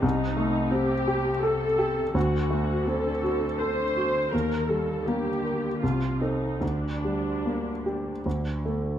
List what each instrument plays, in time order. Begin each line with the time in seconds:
0.02 grand piano C2, cello section C3, viola section D#4
0.37 grand piano A3
0.71 grand piano C4, viola section G4
1.08 grand piano G4
1.43 grand piano A4, viola section A4
1.79 grand piano G4
2.14 grand piano D2, cello section D3, viola section F#4
2.50 grand piano A3
2.87 grand piano C4, viola section A4
3.23 grand piano F#4
3.59 grand piano A4, viola section C5
3.97 grand piano F#4
4.32 grand piano D#2, cello section D#3, viola section A#4
4.69 grand piano G3, viola section A4
5.05 cello section D3, grand piano A#3, viola section G4
5.45 grand piano A#4
5.81 grand piano C2, cello section C3, viola section F4
6.20 grand piano C4 A4, viola section D#4
6.61 grand piano D2, cello section D3, viola section D4
7.05 grand piano G3
7.46 grand piano A#3
7.86 grand piano G4
8.25 grand piano D2, cello section D3
8.65 grand piano A3 A4